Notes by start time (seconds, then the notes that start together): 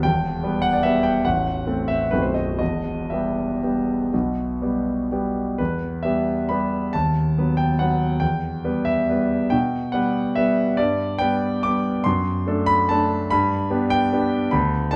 0.03 E1 E2 G5
0.43 G3 B3 B4
0.62 F#5
0.73 D5
0.83 G3 B3 B4 E5
1.03 G5
1.25 A0 A1 F#5
1.67 A3 C4 A4
1.88 E5
2.11 B0 B1 A3 C4 F#4 B4
2.22 C5
2.34 D#5
2.59 E1 E2 D#5
3.10 G3 B3 G4 E5
3.63 G3 B3 G4
4.13 B1 B2
4.62 G3 B3 G4
5.12 G3 B3 G4
5.58 E2 B4
6.03 G3 B3 G4 E5
6.49 G3 B3 G4 B5
6.93 D#2 A5
7.38 F#3 B3 B4
7.57 G5
7.79 F#3 B3 B4 F#5
8.20 E2 G5
8.64 G3 B3 B4
8.85 E5
9.09 G3 B3 B4
9.50 B2 G5
9.92 G3 B3 B4 F#5
10.35 G3 B3 B4 E5
10.77 G2 D5
11.18 G3 B3 B4 G5
11.63 G3 B3 B4 D6
12.04 F#2 C6
12.47 A3 D4 A4
12.66 B5
12.89 A3 D4 A4 A5
13.30 G2 B5
13.70 B3 D4 G4
13.90 G5
14.12 B3 D4 G4
14.51 D2 B5
14.91 B3 D4 A5